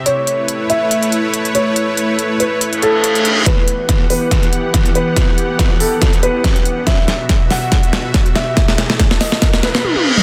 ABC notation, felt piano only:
X:1
M:4/4
L:1/8
Q:"Swing 16ths" 1/4=141
K:Ador
V:1 name="Felt piano"
^c3 e4 c- | ^c3 B z A3 | B3 B4 B- | B3 A z B3 |
e3 f4 e- | e3 ^d z B z2 |]